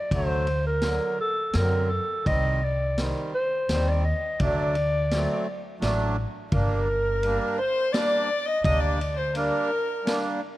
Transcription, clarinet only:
Already playing: D5
0.12 C5
0.67 A#4
1.21 A4
1.56 A#4
1.90 A4
2.27 D#5
2.64 D5
3.34 C5
3.88 D5
4.05 D#5
4.40 D5
6.53 A#4
7.58 C5
7.92 D5
8.48 D#5
8.65 D#5
8.81 D5
9.18 C5
9.37 A#4

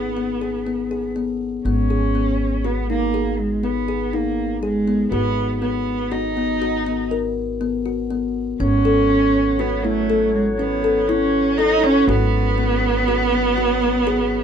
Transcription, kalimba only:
0.17 B3
0.41 G#4
0.67 B3
0.91 G#4
1.16 B3
1.66 B3
1.90 G#4
2.15 B3
2.65 F#4
2.90 D#4
3.14 G#4
3.63 B3
3.88 G#4
4.13 D#4
4.63 G#4
4.88 B3
5.12 F#4
5.62 B3
6.12 F#4
6.37 B3
6.62 F#4
6.86 B3
7.11 A#4
7.61 B3
7.86 F#4
8.10 B3
8.60 C#4
8.85 A4
9.10 C#4
9.59 F#4
9.84 E4
10.10 A4
10.59 C#4
10.84 A4
11.09 E4
11.59 A4
11.84 C#4
12.09 F#4
12.58 B3
13.08 F#4
13.33 B3
13.58 F#4
13.82 B3
14.07 G#4

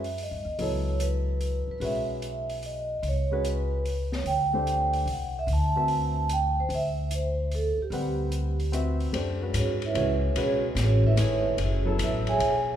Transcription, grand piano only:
0.59 F#3 B3 E4 A4
1.81 G#3 C#4 F#4 B4
3.31 G#3 C#4 F#4 B4
4.53 A3 D4 G4 C5
5.76 C4 F#4 B4 E5
7.92 G3 C4 B4 F#5
8.72 C4 F#4 B4 E5
9.13 A3 D4 G4 C5
9.41 G#3 C#4 F#4 B4
9.94 G#3 C#4 F#4 C#5
10.36 G#3 C#4 F#4 B4
11.16 A3 E4 G#4 C#5
11.85 F#3 B3 E4 A4

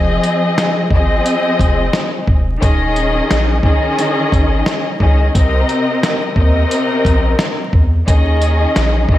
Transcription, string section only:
Already playing: F3 C4 G#4 D#5
0.93 F3 C4 G#4 D#5
2.60 D#3 C#4 G#4 D#5
3.63 D#3 C#4 G#4 D#5
5.00 D#3 C#4 G#4 D#5
5.34 C3 C4 A#4 D#5
6.36 C3 C4 A#4 D#5
8.07 D#3 C#4 G#4 D#5
9.11 D#3 C#4 G#4 D#5

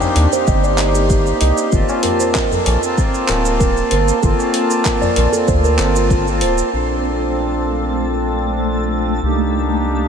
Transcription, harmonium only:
Already playing: A#3 D4 D#4 G4
0.30 A#3 D#4
0.35 G4
1.71 A#3 C4 F4
1.75 A5
2.81 A#3 C4 F4 A5
4.21 A#3 C4 F4
4.25 A5
5.32 A#3 C4 F4 A5
6.26 A#3 C4 F4 A5
6.71 C4 D4 F4
6.75 A4
9.21 A#3 D4 D#4
9.25 G4

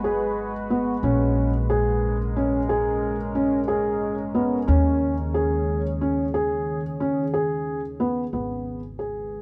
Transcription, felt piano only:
0.04 G#4
0.70 B3
1.04 C#4
1.70 G#4
2.36 C#4
2.69 G#4
3.35 C#4
3.68 G#4
4.34 B3
4.68 C#4
5.34 G#4
6.01 C#4
6.34 G#4
7.00 C#4
7.34 G#4
8.00 B3
8.33 B3
8.99 G#4

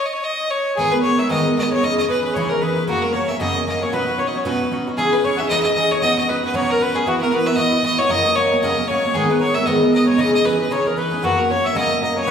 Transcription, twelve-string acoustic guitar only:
0.77 G#2 D#3 G#3 B3 D#4 A#4
0.91 G#3 B3 D#4 A#4
1.02 G#3 B3 D#4 A#4
1.18 G#3 B3 D#4 A#4
1.29 G#2 D#3 G#3 B3 D#4 A#4
1.45 G#3 B3 D#4 A#4
1.57 G#3 B3 D#4 A#4
1.72 G#3 B3 D#4 A#4
1.83 C#3 E3 C#4 D#4 G#4
1.97 C#4 D#4 G#4
2.08 E3 C#4 D#4 G#4
2.24 C#4 D#4 G#4
2.35 C#3 E3 C#4 D#4 G#4
2.50 C#4 D#4 G#4
2.61 E3 C#4 D#4 G#4
2.76 C#4 D#4 G#4
2.87 F#2 C#3 F#3 A#3 C#4 A#4
3.02 F#3 A#3 C#4 A#4
3.14 F#3 A#3 C#4 A#4
3.30 F#3 A#3 C#4 A#4
3.40 F#2 C#3 F#3 A#3 C#4 A#4
3.55 F#3 A#3 C#4 A#4
3.67 F#3 A#3 C#4 A#4
3.81 F#3 A#3 C#4 A#4
3.92 B2 F#3 C#4 D#4 F#4
4.07 C#4 D#4 F#4
4.18 F#3 C#4 D#4 F#4
4.34 C#4 D#4 F#4
4.45 B2 F#3 C#4 D#4 F#4
4.60 C#4 D#4 F#4
4.71 F#3 C#4 D#4 F#4
4.87 C#4 D#4 F#4
4.98 C#3 E3 C#4 D#4 G#4
5.12 C#4 D#4 G#4
5.24 E3 C#4 D#4 G#4
5.39 C#4 D#4 G#4
5.50 C#3 E3 C#4 D#4 G#4
5.65 C#4 D#4 G#4
5.75 E3 C#4 D#4 G#4
5.91 C#4 D#4 G#4
6.02 B2 F#3 C#4 D#4 F#4
6.17 C#4 D#4 F#4
6.28 F#3 C#4 D#4 F#4
6.43 C#4 D#4 F#4
6.54 B2 F#3 C#4 D#4 F#4
6.69 C#4 D#4 F#4
6.79 F#3 C#4 D#4 F#4
6.94 C#4 D#4 F#4
7.06 E3 B3 E4 F#4
7.20 B3 E4 F#4
7.31 E3 B3 E4 F#4
7.46 B3 E4 F#4
7.56 E3 B3 E4 F#4
7.71 B3 E4 F#4
7.82 E3 B3 E4 F#4
7.98 B3 E4 F#4
8.09 F#2 C#3 F#3 A#3 C#4 A#4
8.25 F#3 A#3 C#4 A#4
8.36 F#3 A#3 C#4 A#4
8.52 F#3 A#3 C#4 A#4
8.63 F#2 C#3 F#3 A#3 C#4 A#4
8.77 F#3 A#3 C#4 A#4
8.89 F#3 A#3 C#4 A#4
9.04 F#3 A#3 C#4 A#4
9.14 G#2 D#3 G#3 B3 D#4 A#4
9.29 G#3 B3 D#4 A#4
9.39 G#3 B3 D#4 A#4
9.55 G#3 B3 D#4 A#4
9.66 G#2 D#3 G#3 B3 D#4 A#4
9.81 G#3 B3 D#4 A#4
9.92 G#3 B3 D#4 A#4
10.07 G#3 B3 D#4 A#4
10.18 C#3 E3 C#4 D#4 G#4
10.33 C#4 D#4 G#4
10.44 E3 C#4 D#4 G#4
10.59 C#4 D#4 G#4
10.71 C#3 E3 C#4 D#4 G#4
10.85 C#4 D#4 G#4
10.96 E3 C#4 D#4 G#4
11.11 C#4 D#4 G#4
11.23 F#2 C#3 F#3 A#3 C#4 A#4
11.38 F#3 A#3 C#4 A#4
11.50 F#3 A#3 C#4 A#4
11.64 F#3 A#3 C#4 A#4
11.75 F#2 C#3 F#3 A#3 C#4 A#4
11.91 F#3 A#3 C#4 A#4
12.01 F#3 A#3 C#4 A#4
12.16 F#3 A#3 C#4 A#4
12.26 B2 F#3 C#4 D#4

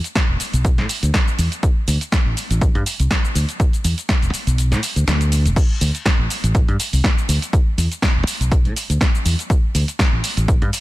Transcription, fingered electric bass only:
0.29 E1
0.53 B1
0.78 A2
1.03 D2
1.39 E2
1.88 D2
2.26 A1
2.50 A1
2.75 G2
3.00 C2
3.35 D2
3.84 E2
4.22 E1
4.34 muted fingered electric bass stroke
4.47 B1
4.71 A2
4.96 D2
5.07 D2
5.45 E1
5.81 D2
6.19 A1
6.44 A1
6.68 G2
6.93 C2
7.29 D2
7.78 E2
8.16 E1
8.40 B1
8.65 A2
8.90 D2
9.25 E2
9.75 D2
10.13 A1
10.37 A1
10.62 G2

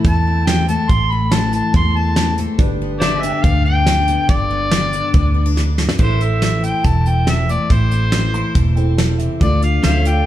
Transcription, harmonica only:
0.06 A5
0.47 G5
0.69 A5
0.90 C6
1.11 B5
1.33 A5
1.54 A5
1.76 C6
1.96 A5
2.99 D5
3.22 E5
3.42 F5
3.65 G5
4.29 D5
6.02 C5
6.23 E5
6.44 E5
6.64 G5
6.85 A5
7.08 G5
7.30 E5
7.51 D5
7.72 C5
9.42 D5
9.63 F5
9.84 F5
10.07 G5

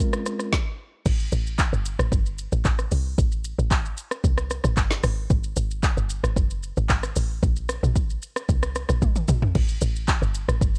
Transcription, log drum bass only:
1.06 A1
1.32 A1
1.73 G1
1.99 A1
2.12 G1
2.52 A1
2.65 A1
2.92 C2
3.18 A1
3.59 A1
4.24 C2
4.64 A1
4.77 G1
5.04 G#1
5.30 G#1
5.57 G#1
5.97 G1
6.24 G#1
6.36 F#1
6.77 G#1
6.90 G#1
7.16 A1
7.43 A#1
7.83 A#1
8.49 C2
8.89 A#1
9.02 A1
9.29 A#1
9.55 A1
9.82 A1
10.22 G1
10.48 A1
10.61 G1

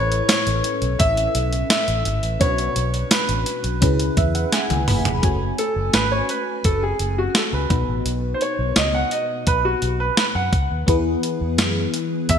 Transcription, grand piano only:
Already playing: C#5
0.28 C#5
0.99 E5
1.70 E5
2.41 C#5
3.11 B4
5.59 A4
5.94 B4
6.12 C#5
6.29 B4
6.65 A4
6.83 G#4
7.18 F#4
7.36 A4
7.53 B4
8.34 C5
8.42 C#5
8.77 D#5
8.95 F#5
9.12 D#5
9.47 B4
9.65 F#4
10.00 B4
10.18 B4
10.35 F#5
12.30 E5

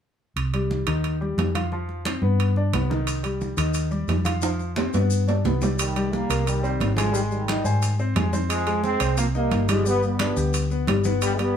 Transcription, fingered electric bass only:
0.36 C2
0.87 D#2
1.37 F2
2.22 G2
2.73 C2
3.57 D#2
4.08 F2
4.94 G2
5.44 C2
6.29 C2
6.80 G#1
7.64 G#2
8.15 F2
9.01 C2
9.51 G1
10.37 D2
10.87 G1

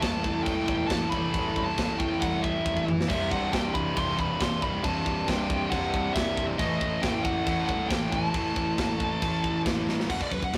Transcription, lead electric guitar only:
0.02 A5
0.43 G5
0.66 G5
0.87 A5
1.09 B5
1.65 A5
1.98 G5
2.21 F#5
2.43 E5
3.09 E5
3.31 F#5
3.53 G5
3.74 B5
3.98 C6
4.20 B5
4.42 C6
4.63 B5
4.84 A5
5.28 G5
5.70 F#5
6.14 E5
6.59 D#5
7.02 G5
7.24 F#5
7.66 F#5
7.89 G5
8.12 A5
10.10 F#5
10.22 D5
10.32 B4
10.44 F#5

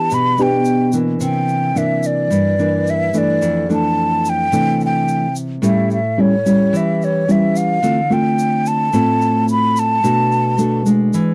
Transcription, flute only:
Already playing: A5
0.14 B5
0.42 G5
1.22 G5
1.78 E5
2.06 D5
2.90 E5
3.18 D5
3.73 A5
4.29 G5
4.86 G5
5.65 E5
5.93 E5
6.21 C#5
6.77 E5
7.04 C#5
7.31 E5
7.57 F5
8.13 G5
8.68 A5
9.51 B5
9.79 A5

